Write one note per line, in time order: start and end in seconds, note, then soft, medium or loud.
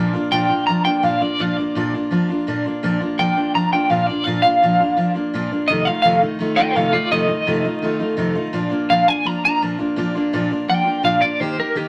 0.00 0.14 A#2 medium
0.00 0.14 F3 medium
0.00 0.14 A#3 loud
0.00 0.13 D4 loud
0.00 0.12 F4 loud
0.13 0.31 A#3 medium
0.13 0.32 D4 medium
0.13 0.31 F4 medium
0.31 0.50 A#2 medium
0.31 0.50 F3 medium
0.31 0.50 A#3 medium
0.31 0.50 D4 medium
0.31 0.48 F4 medium
0.31 0.66 G5 loud
0.49 0.68 A#3 soft
0.49 0.68 D4 soft
0.49 0.68 F4 medium
0.67 0.86 F3 medium
0.67 0.85 A#3 medium
0.67 0.85 D4 medium
0.67 0.83 F4 medium
0.67 0.84 A#5 medium
0.84 1.02 A#3 soft
0.84 1.02 D4 soft
0.84 1.03 F4 medium
0.84 1.04 G5 medium
1.03 1.21 A#2 medium
1.03 1.21 F3 medium
1.03 1.21 A#3 medium
1.03 1.20 D4 medium
1.03 1.19 F4 medium
1.03 1.22 F5 medium
1.20 1.38 A#3 soft
1.20 1.39 D4 soft
1.20 1.39 F4 soft
1.20 1.41 D5 medium
1.39 1.57 A#2 medium
1.39 1.57 F3 medium
1.39 1.57 A#3 medium
1.39 1.58 D4 medium
1.39 1.57 F4 medium
1.39 1.57 F5 medium
1.57 1.75 A#3 soft
1.57 1.75 D4 medium
1.57 1.76 F4 medium
1.57 2.26 D5 medium
1.75 1.93 A#2 medium
1.75 1.94 F3 medium
1.75 1.94 A#3 medium
1.75 1.94 D4 medium
1.75 1.93 F4 medium
1.94 2.10 A#3 soft
1.94 2.11 D4 soft
1.94 2.11 F4 medium
2.11 2.29 F3 medium
2.11 2.29 A#3 medium
2.11 2.29 D4 medium
2.11 2.28 F4 medium
2.30 2.47 A#3 soft
2.30 2.47 D4 soft
2.30 2.47 F4 medium
2.47 2.65 A#2 medium
2.47 2.65 F3 medium
2.47 2.65 A#3 medium
2.47 2.65 D4 medium
2.47 2.64 F4 medium
2.65 2.82 A#3 soft
2.65 2.83 D4 soft
2.65 2.83 F4 medium
2.83 3.01 A#2 medium
2.83 3.01 F3 medium
2.83 3.01 A#3 medium
2.83 3.00 D4 loud
2.83 2.99 F4 loud
3.00 3.18 A#3 soft
3.00 3.18 D4 medium
3.00 3.18 F4 medium
3.18 3.36 A#2 medium
3.18 3.36 F3 medium
3.18 3.36 A#3 medium
3.18 3.36 D4 medium
3.18 3.35 F4 medium
3.18 3.53 G5 medium
3.37 3.54 A#3 soft
3.37 3.54 D4 soft
3.37 3.54 F4 medium
3.54 3.72 F3 medium
3.54 3.73 A#3 medium
3.54 3.72 D4 medium
3.54 3.72 F4 medium
3.54 3.72 A#5 medium
3.73 3.89 A#3 soft
3.73 3.90 D4 soft
3.73 3.90 F4 medium
3.73 3.90 G5 medium
3.90 4.08 A#2 medium
3.90 4.08 F3 medium
3.90 4.08 A#3 medium
3.90 4.08 D4 medium
3.90 4.08 F4 medium
3.90 4.07 F5 medium
4.07 4.26 A#3 soft
4.07 4.27 D4 soft
4.07 4.26 F4 soft
4.07 4.24 D5 medium
4.24 4.44 A#2 medium
4.24 4.44 F3 medium
4.24 4.44 A#3 medium
4.24 4.44 D4 medium
4.24 4.43 F4 medium
4.24 4.41 F5 medium
4.42 4.62 D4 medium
4.42 4.62 F4 medium
4.42 5.12 F5 loud
4.47 4.62 A#3 soft
4.62 4.80 A#2 medium
4.62 4.80 F3 medium
4.62 4.80 A#3 medium
4.62 4.79 D4 medium
4.62 4.78 F4 medium
4.79 4.96 A#3 soft
4.79 4.96 D4 soft
4.79 4.97 F4 medium
4.97 5.15 F3 medium
4.97 5.15 A#3 medium
4.97 5.14 D4 medium
4.97 5.13 F4 medium
5.15 5.33 A#3 soft
5.15 5.33 D4 medium
5.15 5.33 F4 medium
5.33 5.51 A#2 medium
5.33 5.51 F3 medium
5.33 5.52 A#3 medium
5.33 5.51 D4 medium
5.33 5.50 F4 loud
5.51 5.70 A#3 soft
5.51 5.69 D4 medium
5.51 5.69 F4 medium
5.68 5.87 F2 medium
5.68 5.87 C3 medium
5.68 5.87 D#3 medium
5.68 5.87 A3 medium
5.68 5.86 D#4 medium
5.68 5.86 F4 medium
5.68 5.85 D#5 medium
5.85 6.03 D#3 soft
5.85 6.04 A3 medium
5.85 6.04 D#4 medium
5.85 6.04 F4 medium
5.85 6.01 F5 medium
6.02 6.22 F2 medium
6.02 6.22 C3 medium
6.02 6.22 D#3 medium
6.02 6.22 A3 medium
6.02 6.21 D#4 medium
6.02 6.20 F4 loud
6.02 6.20 F5 loud
6.21 6.38 D#3 soft
6.21 6.39 A3 soft
6.21 6.39 D#4 soft
6.21 6.40 F4 medium
6.39 6.57 D#3 medium
6.39 6.58 A3 medium
6.39 6.57 D#4 medium
6.39 6.57 F4 medium
6.56 6.75 D#3 soft
6.56 6.76 A3 medium
6.56 6.75 D#4 medium
6.56 6.76 F4 medium
6.56 6.75 D#5 medium
6.56 6.76 G5 loud
6.75 6.93 F2 medium
6.75 6.93 C3 medium
6.75 6.94 D#3 medium
6.75 6.94 A3 medium
6.75 6.93 D#4 medium
6.75 6.92 F4 medium
6.75 6.93 A4 medium
6.75 6.94 F5 loud
6.93 7.10 D#3 soft
6.93 7.11 A3 soft
6.93 7.11 D#4 medium
6.93 7.11 F4 medium
6.93 7.11 D5 medium
7.11 7.29 F2 medium
7.11 7.29 C3 medium
7.11 7.28 D#3 medium
7.11 7.28 A3 medium
7.11 7.27 D#4 medium
7.11 7.27 F4 medium
7.11 8.15 D#5 loud
7.28 7.46 D#3 soft
7.28 7.46 A3 medium
7.28 7.46 D#4 medium
7.28 7.46 F4 medium
7.46 7.64 F2 medium
7.46 7.65 C3 medium
7.46 7.64 D#3 medium
7.46 7.64 A3 loud
7.46 7.63 D#4 medium
7.46 7.63 F4 medium
7.64 7.81 D#3 soft
7.64 7.82 A3 soft
7.64 7.82 D#4 medium
7.64 7.82 F4 medium
7.82 8.00 D#3 medium
7.82 8.00 A3 medium
7.82 7.98 D#4 medium
7.82 7.98 F4 medium
7.99 8.16 D#3 soft
7.99 8.17 A3 medium
7.99 8.17 D#4 medium
7.99 8.17 F4 medium
8.17 8.35 F2 medium
8.17 8.36 C3 medium
8.17 8.35 D#3 medium
8.17 8.35 A3 medium
8.17 8.35 D#4 medium
8.17 8.34 F4 medium
8.35 8.53 D#3 soft
8.35 8.52 A3 soft
8.35 8.53 D#4 medium
8.35 8.53 F4 medium
8.53 8.71 A#2 medium
8.53 8.71 F3 medium
8.53 8.71 A#3 loud
8.53 8.70 D4 medium
8.53 8.68 F4 medium
8.70 8.89 A#3 medium
8.70 8.89 D4 medium
8.70 8.88 F4 medium
8.89 9.07 A#2 medium
8.89 9.07 F3 medium
8.89 9.07 A#3 medium
8.89 9.06 D4 medium
8.89 9.05 F4 medium
8.89 9.08 F5 loud
9.06 9.24 A#3 soft
9.06 9.25 D4 soft
9.06 9.25 F4 soft
9.06 9.27 G#5 medium
9.24 9.43 F3 medium
9.24 9.43 A#3 medium
9.24 9.43 D4 medium
9.24 9.43 F4 medium
9.24 9.43 A#5 medium
9.44 9.61 A#3 soft
9.44 9.62 D4 soft
9.44 9.61 F4 medium
9.44 9.62 A#5 medium
9.61 9.79 A#2 medium
9.61 9.79 F3 medium
9.61 9.79 A#3 medium
9.61 9.78 D4 medium
9.61 9.77 F4 medium
9.79 9.96 A#3 soft
9.79 9.97 D4 soft
9.79 9.97 F4 medium
9.96 10.14 A#2 medium
9.96 10.15 F3 medium
9.96 10.15 A#3 loud
9.96 10.15 D4 medium
9.96 10.14 F4 medium
10.15 10.33 A#3 medium
10.15 10.32 D4 medium
10.15 10.33 F4 medium
10.33 10.51 A#2 medium
10.33 10.51 F3 medium
10.33 10.51 A#3 loud
10.33 10.50 D4 loud
10.33 10.49 F4 loud
10.51 10.67 A#3 soft
10.51 10.69 D4 medium
10.51 10.68 F4 medium
10.68 10.86 F3 medium
10.68 10.86 A#3 medium
10.68 10.85 D4 medium
10.68 10.83 F4 medium
10.68 11.04 G5 medium
10.84 11.02 A#3 soft
10.84 11.02 D4 soft
10.84 11.03 F4 medium
11.03 11.21 A#2 medium
11.03 11.21 F3 medium
11.03 11.22 A#3 medium
11.03 11.22 D4 medium
11.03 11.21 F4 medium
11.03 11.22 F5 medium
11.22 11.39 A#3 soft
11.22 11.40 D4 soft
11.22 11.40 F4 medium
11.22 11.40 D5 medium
11.40 11.58 D#3 medium
11.40 11.58 A#3 medium
11.40 11.58 D#4 medium
11.40 11.56 G4 medium
11.40 11.57 C5 medium
11.58 11.75 A#3 soft
11.58 11.75 D#4 soft
11.58 11.75 G4 medium
11.58 11.77 A#4 medium
11.75 11.88 D#3 medium
11.75 11.88 A#3 medium
11.75 11.88 D#4 medium
11.75 11.88 G4 medium